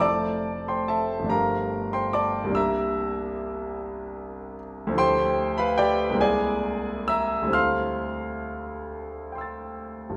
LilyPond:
<<
  \new Staff \with { instrumentName = "Grand piano" } { \time 6/8 \key d \minor \tempo 4. = 48 << { r2. | r2. | r2. | r2 <g'' c''' e''' a'''>4 | } \\ { <d'' a'' d'''>8. <c'' g'' c'''>16 <a' e'' a''>8 <bes' f'' bes''>8. <c'' g'' c'''>16 <d'' a'' d'''>8 | <e'' bes'' e'''>2~ <e'' bes'' e'''>8 r8 | <c'' g'' c'''>8. <b' f'' b''>16 <g' d'' g''>8 <gis' d'' gis''>4 <e'' bes'' e'''>8 | <f'' c''' f'''>2. | } >> }
  \new Staff \with { instrumentName = "Grand piano" } { \time 6/8 \key d \minor <f,, f a e' a'>4. <g,, f a d' g'>4. | <c, g bes d' g'>2. | <d, f a e' g'>4. <c, gis bes e'>4. | <d, g c' e' a'>2. | }
>>